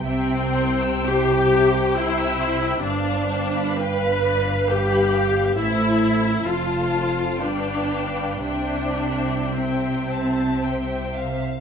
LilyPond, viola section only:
\new Staff \with { instrumentName = "Viola section" } { \time 3/4 \key c \major \tempo 4 = 63 c'4 g'4 e'4 | d'4 b'4 g'4 | e'4 f'4 d'4 | d'4 c'4. r8 | }